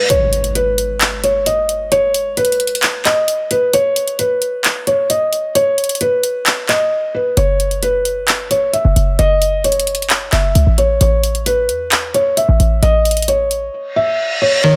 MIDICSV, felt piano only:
0, 0, Header, 1, 2, 480
1, 0, Start_track
1, 0, Tempo, 454545
1, 105, Time_signature, 4, 2, 24, 8
1, 15588, End_track
2, 0, Start_track
2, 0, Title_t, "Felt piano"
2, 0, Program_c, 0, 0
2, 105, Note_on_c, 0, 73, 93
2, 556, Note_off_c, 0, 73, 0
2, 585, Note_on_c, 0, 71, 84
2, 1262, Note_off_c, 0, 71, 0
2, 1306, Note_on_c, 0, 73, 84
2, 1527, Note_off_c, 0, 73, 0
2, 1546, Note_on_c, 0, 75, 71
2, 1996, Note_off_c, 0, 75, 0
2, 2024, Note_on_c, 0, 73, 106
2, 2475, Note_off_c, 0, 73, 0
2, 2505, Note_on_c, 0, 71, 91
2, 3183, Note_off_c, 0, 71, 0
2, 3225, Note_on_c, 0, 75, 94
2, 3676, Note_off_c, 0, 75, 0
2, 3705, Note_on_c, 0, 71, 78
2, 3927, Note_off_c, 0, 71, 0
2, 3945, Note_on_c, 0, 73, 99
2, 4396, Note_off_c, 0, 73, 0
2, 4426, Note_on_c, 0, 71, 85
2, 5103, Note_off_c, 0, 71, 0
2, 5145, Note_on_c, 0, 73, 84
2, 5367, Note_off_c, 0, 73, 0
2, 5385, Note_on_c, 0, 75, 75
2, 5836, Note_off_c, 0, 75, 0
2, 5864, Note_on_c, 0, 73, 101
2, 6315, Note_off_c, 0, 73, 0
2, 6345, Note_on_c, 0, 71, 84
2, 7023, Note_off_c, 0, 71, 0
2, 7065, Note_on_c, 0, 75, 88
2, 7516, Note_off_c, 0, 75, 0
2, 7546, Note_on_c, 0, 71, 75
2, 7767, Note_off_c, 0, 71, 0
2, 7784, Note_on_c, 0, 73, 92
2, 8235, Note_off_c, 0, 73, 0
2, 8264, Note_on_c, 0, 71, 84
2, 8942, Note_off_c, 0, 71, 0
2, 8984, Note_on_c, 0, 73, 80
2, 9206, Note_off_c, 0, 73, 0
2, 9222, Note_on_c, 0, 76, 73
2, 9674, Note_off_c, 0, 76, 0
2, 9703, Note_on_c, 0, 75, 108
2, 10155, Note_off_c, 0, 75, 0
2, 10184, Note_on_c, 0, 73, 81
2, 10862, Note_off_c, 0, 73, 0
2, 10905, Note_on_c, 0, 76, 87
2, 11356, Note_off_c, 0, 76, 0
2, 11385, Note_on_c, 0, 73, 82
2, 11607, Note_off_c, 0, 73, 0
2, 11626, Note_on_c, 0, 73, 92
2, 12076, Note_off_c, 0, 73, 0
2, 12104, Note_on_c, 0, 71, 83
2, 12782, Note_off_c, 0, 71, 0
2, 12825, Note_on_c, 0, 73, 85
2, 13047, Note_off_c, 0, 73, 0
2, 13064, Note_on_c, 0, 76, 76
2, 13515, Note_off_c, 0, 76, 0
2, 13544, Note_on_c, 0, 75, 103
2, 13995, Note_off_c, 0, 75, 0
2, 14025, Note_on_c, 0, 73, 84
2, 14702, Note_off_c, 0, 73, 0
2, 14745, Note_on_c, 0, 76, 84
2, 15196, Note_off_c, 0, 76, 0
2, 15224, Note_on_c, 0, 73, 81
2, 15446, Note_off_c, 0, 73, 0
2, 15464, Note_on_c, 0, 73, 94
2, 15588, Note_off_c, 0, 73, 0
2, 15588, End_track
0, 0, End_of_file